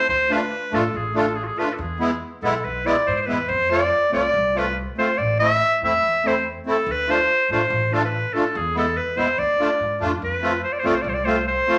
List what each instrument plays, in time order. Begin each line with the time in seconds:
0.08 upright bass D2, clarinet C5
0.30 accordion A3 D4 F4, clarinet B4
0.72 upright bass A1, accordion A3 D4 F4, clarinet A4
0.94 upright bass A1, clarinet G#4
1.15 accordion A3 D4 F4, clarinet A4
1.35 clarinet G#4
1.44 clarinet F4 G#4
1.58 accordion A3 D4 F4, clarinet B4
1.73 clarinet A4
1.78 upright bass E2, clarinet G#4
2.00 accordion G#3 B3 E4
2.42 upright bass B1, accordion G#3 B3 E4, clarinet A4
2.64 upright bass B1, clarinet B4
2.86 accordion G#3 B3 E4, clarinet D5
3.07 upright bass G#2, clarinet C5 D5
3.14 clarinet C5
3.21 clarinet C5
3.26 upright bass E2, accordion G#3 B3 E4, clarinet B4
3.48 upright bass F2, clarinet C5
3.70 accordion A3 C4 F4, clarinet D5
4.12 upright bass C2, accordion A3 C4 F4, clarinet D5
4.34 upright bass C2
4.55 accordion A3 C4 F4, clarinet B4
4.98 accordion A3 C4 F4, clarinet C5
5.18 upright bass A1, clarinet D5
5.39 accordion A3 C4 E4, clarinet E5
5.82 upright bass E2, accordion A3 C4 E4, clarinet E5
6.03 upright bass E2
6.24 accordion A3 C4 E4, clarinet C5
6.66 accordion A3 C4 E4
6.71 clarinet A4
6.86 upright bass D2
6.91 clarinet B4
7.08 accordion A3 D4 F4, clarinet C5
7.49 upright bass A1, accordion A3 D4 F4, clarinet C5
7.70 upright bass A1
7.92 accordion A3 D4 F4, clarinet A4
8.05 clarinet B4
8.33 accordion A3 D4 F4, clarinet A4
8.55 upright bass E2, clarinet G#4
8.75 accordion G#3 B3 E4, clarinet A4
8.97 clarinet B4
9.17 upright bass E2, accordion G#3 B3 E4, clarinet C5
9.38 upright bass D2, clarinet D5
9.59 accordion A3 D4 F4
9.80 upright bass G#2
10.00 upright bass F2, accordion A3 D4 F4
10.22 upright bass F2, clarinet B4
10.42 accordion A3 C4 F4
10.64 clarinet C5
10.72 clarinet D5
10.79 clarinet C5
10.84 upright bass C2, accordion A3 C4 F4, clarinet D5
10.94 clarinet C5
11.01 upright bass C2, clarinet D5
11.09 clarinet C5
11.14 clarinet D5
11.24 accordion A3 C4 F4, clarinet C5
11.48 clarinet C5
11.67 accordion A3 C4 F4